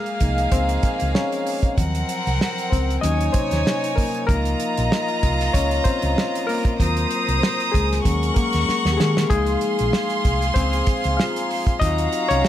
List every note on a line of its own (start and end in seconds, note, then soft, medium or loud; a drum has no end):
0.00 0.49 G#3 medium
0.00 1.74 A#3 medium
0.00 0.48 G#4 medium
0.00 1.73 G#4 medium
0.00 1.73 F5 medium
0.00 2.05 F6 medium
0.06 closed hi-hat soft
0.20 0.45 C2 medium
0.20 0.63 F3 soft
0.20 0.64 A#3 soft
0.20 0.64 D#4 medium
0.20 2.05 D#5 soft
0.20 kick medium
0.20 closed hi-hat medium
0.38 closed hi-hat soft
0.43 2.25 G#5 soft
0.52 0.77 C#2 loud
0.52 1.11 C4 medium
0.52 1.17 C5 medium
0.52 kick medium
0.52 closed hi-hat medium
0.63 2.42 A#5 soft
0.69 closed hi-hat soft
0.83 kick medium
0.83 closed hi-hat medium
1.00 1.12 C#2 medium
1.00 closed hi-hat soft
1.15 1.60 C#4 medium
1.15 1.60 C#5 medium
1.15 snare loud
1.32 closed hi-hat medium
1.47 open hi-hat medium
1.63 kick medium
1.63 closed hi-hat soft
1.77 2.02 D#2 medium
1.77 2.21 F3 medium
1.77 2.20 F#3 medium
1.77 3.00 C4 medium
1.77 2.20 C4 soft
1.77 3.00 A#4 medium
1.77 3.00 F#5 medium
1.77 kick loud
1.77 closed hi-hat medium
1.95 closed hi-hat soft
2.09 closed hi-hat medium
2.27 2.38 C2 medium
2.27 closed hi-hat soft
2.41 snare loud
2.58 closed hi-hat soft
2.70 2.97 C#2 medium
2.70 3.01 C4 medium
2.70 3.03 C5 medium
2.70 kick medium
2.70 closed hi-hat medium
2.90 closed hi-hat soft
3.01 3.28 D#2 medium
3.01 3.45 F#3 medium
3.01 3.46 A#3 soft
3.01 3.46 C#4 medium
3.01 4.26 D#4 medium
3.01 3.33 D#4 medium
3.01 4.26 C#5 medium
3.01 3.35 D#5 medium
3.01 4.26 G#5 medium
3.01 closed hi-hat medium
3.21 closed hi-hat soft
3.32 3.94 C3 medium
3.32 3.98 C5 medium
3.32 kick medium
3.32 closed hi-hat medium
3.51 3.63 D#2 medium
3.51 snare soft
3.51 closed hi-hat medium
3.67 snare medium
3.84 closed hi-hat medium
3.96 4.27 A#3 medium
3.96 4.26 A#4 medium
3.96 kick medium
3.96 open hi-hat medium
4.14 closed hi-hat soft
4.27 4.53 C#2 loud
4.27 6.75 F3 medium
4.27 5.50 A#3 medium
4.27 6.76 D#4 soft
4.27 6.76 F4 medium
4.27 5.57 A#4 medium
4.27 6.76 D#5 medium
4.27 6.76 A#5 loud
4.27 kick loud
4.27 closed hi-hat medium
4.45 closed hi-hat soft
4.60 closed hi-hat medium
4.77 4.89 A#1 medium
4.77 closed hi-hat medium
4.92 snare loud
5.08 closed hi-hat soft
5.23 5.47 C2 medium
5.23 kick medium
5.23 closed hi-hat medium
5.41 snare soft
5.41 closed hi-hat soft
5.53 5.79 C#2 loud
5.53 5.84 C#4 medium
5.53 5.83 C#5 medium
5.53 kick medium
5.53 closed hi-hat medium
5.71 closed hi-hat soft
5.84 6.45 C4 medium
5.84 6.49 C5 medium
5.84 kick medium
5.84 closed hi-hat medium
6.02 6.14 C#2 medium
6.02 closed hi-hat medium
6.18 snare loud
6.35 closed hi-hat medium
6.47 7.70 A#3 medium
6.47 7.77 A#4 medium
6.47 open hi-hat medium
6.65 kick medium
6.65 closed hi-hat soft
6.79 7.04 D#2 loud
6.79 7.69 F#3 medium
6.79 7.70 C4 soft
6.79 7.70 F4 medium
6.79 8.02 C5 medium
6.79 8.02 A#5 medium
6.79 8.02 D#6 medium
6.79 kick medium
6.79 closed hi-hat medium
6.97 closed hi-hat medium
7.11 closed hi-hat medium
7.28 7.39 C2 medium
7.28 closed hi-hat soft
7.43 snare loud
7.60 closed hi-hat soft
7.72 7.99 C#2 medium
7.72 8.33 G#3 medium
7.72 8.37 G#4 medium
7.72 8.33 G#5 medium
7.72 kick medium
7.72 closed hi-hat medium
7.92 snare soft
7.92 closed hi-hat soft
8.04 8.30 D#2 medium
8.04 8.47 F#3 medium
8.04 8.35 A#3 soft
8.04 8.48 C#4 medium
8.04 9.28 A#4 medium
8.04 9.28 F#5 medium
8.04 9.28 C#6 loud
8.04 kick medium
8.04 closed hi-hat medium
8.23 closed hi-hat soft
8.34 8.89 A#3 medium
8.34 8.93 A#4 medium
8.34 kick medium
8.34 closed hi-hat medium
8.53 8.65 D#2 medium
8.53 snare soft
8.53 closed hi-hat medium
8.68 muted fingered electric bass stroke soft
8.68 snare soft
8.85 8.96 D#2 medium
8.85 snare medium
8.92 8.99 G4 medium
8.97 9.24 D#3 medium
8.97 9.28 G#3 medium
8.97 9.29 G#4 medium
8.97 snare medium
9.17 snare medium
9.30 9.55 C#2 medium
9.30 10.21 F3 soft
9.30 10.53 G#3 medium
9.30 10.21 A#3 soft
9.30 10.21 D#4 medium
9.30 10.52 G#4 medium
9.30 11.78 G#4 medium
9.30 11.78 F5 medium
9.30 11.78 C6 medium
9.30 kick medium
9.30 closed hi-hat medium
9.46 closed hi-hat soft
9.61 closed hi-hat medium
9.79 9.91 A#1 medium
9.79 closed hi-hat soft
9.93 snare medium
10.10 closed hi-hat soft
10.25 10.49 C2 medium
10.25 kick medium
10.25 closed hi-hat medium
10.42 closed hi-hat soft
10.54 10.80 C#2 medium
10.54 11.15 C4 medium
10.54 11.20 C5 loud
10.54 kick medium
10.54 closed hi-hat medium
10.73 closed hi-hat soft
10.87 12.09 F5 medium
10.87 kick medium
10.87 closed hi-hat medium
11.04 11.16 C#2 medium
11.04 closed hi-hat medium
11.11 12.29 G#5 soft
11.17 11.78 F4 medium
11.17 11.83 F5 medium
11.17 snare loud
11.30 12.46 A#5 soft
11.36 closed hi-hat medium
11.51 open hi-hat medium
11.67 kick medium
11.67 closed hi-hat soft
11.80 12.06 D#2 medium
11.80 12.24 F#3 soft
11.80 12.24 C4 soft
11.80 12.27 D#4 medium
11.80 12.24 F4 medium
11.80 12.48 F#4 medium
11.80 12.30 D#5 loud
11.80 12.48 F5 medium
11.80 12.48 A#5 loud
11.80 kick medium
11.80 closed hi-hat medium
11.98 closed hi-hat medium
12.12 12.48 F5 medium
12.12 closed hi-hat medium
12.29 12.41 C2 medium
12.29 12.48 C#4 medium
12.29 12.48 C#5 loud
12.29 closed hi-hat soft
12.36 12.48 G#5 soft
12.45 snare loud